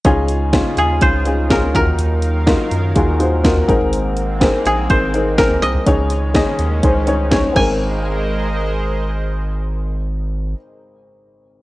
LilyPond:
<<
  \new Staff \with { instrumentName = "Koto" } { \time 4/4 \key aes \mixolydian \tempo 4 = 124 r4. aes'8 c''4 bes'8 bes'8~ | bes'8 r2. r8 | r4. aes'8 c''4 bes'8 ees''8~ | ees''8 r2. aes''8~ |
aes''1~ | aes''1 | }
  \new Staff \with { instrumentName = "Upright piano" } { \time 4/4 \key aes \mixolydian <des' ees' f' aes'>8. r16 <des' ees' f' aes'>8. r16 <des' ees' f' aes'>8 <des' ees' f' aes'>8 <des' ees' f' aes'>8 <ees' f' ges' bes'>8~ | <ees' f' ges' bes'>8 r8 <ees' f' ges' bes'>8. r16 <ees' f' ges' aes'>8 <ees' f' ges' c''>8 <ees' f' ges' bes'>8 <c' ees' aes' bes'>8~ | <c' ees' aes' bes'>8 r8 <c' ees' aes' bes'>8. r16 <c' ees' aes' bes'>8 <c' ees' aes' bes'>8 <c' ees' aes' bes'>8. r16 | <des' ees' aes' des''>8. r16 <des' ees' aes' ees''>8. r16 <des' ees' aes' c''>8 <des' ees' aes' des''>8 <des' ees' aes' des'' aes''>8 <c' ees' aes' bes'>8~ |
<c' ees' aes' bes'>1~ | <c' ees' aes' bes'>1 | }
  \new Staff \with { instrumentName = "Upright piano" } { \clef bass \time 4/4 \key aes \mixolydian des4. r2 ees8~ | ees4 r2 r8 aes,8~ | aes,4 r2. | des4. r2 aes,,8~ |
aes,,1~ | aes,,1 | }
  \new Staff \with { instrumentName = "Analog synth pad" } { \time 4/4 \key aes \mixolydian <des des' ees' f' aes'>2.~ <des des' ees' f' aes'>8 <ees ges bes' f''>8~ | <ees ges bes' f''>2.~ <ees ges bes' f''>8 <aes bes c'>8~ | <aes bes c'>1 | <ees aes des'>2.~ <ees aes des'>8 <aes aes' bes' c'' ees''>8~ |
<aes aes' bes' c'' ees''>1~ | <aes aes' bes' c'' ees''>1 | }
  \new Staff \with { instrumentName = "Analog synth bass" } { \clef bass \time 4/4 \key aes \mixolydian des,4~ des,16 r16 ees,8 des,4. ees,8 | ees,4~ ees,16 r16 ges,8 ees,4. aes,,8~ | aes,,4~ aes,,16 r16 bes,,8 aes,,4. c,8 | des,4~ des,16 r16 ees,8 des,4. aes,,8~ |
aes,,1~ | aes,,1 | }
  \new DrumStaff \with { instrumentName = "Drums" } \drummode { \time 4/4 <hh bd>8 hh8 <hh bd sn>8 hh8 <hh bd>8 hh8 <hh bd sn>16 tomfh16 <hh bd>16 tomfh16 | hh8 hh8 <hh bd sn>8 hh8 <hh bd>8 hh8 <hh bd sn>16 tomfh16 <hh bd>16 tomfh16 | hh8 hh8 <hh bd sn>8 hh8 <hh bd>8 hh8 <hh bd sn>16 tomfh16 hh16 tomfh16 | <hh bd>8 hh8 <hh bd sn>8 hh8 <hh bd>8 hh8 <hh bd sn>16 tomfh16 <cymc bd>8 |
r4 r4 r4 r4 | r4 r4 r4 r4 | }
>>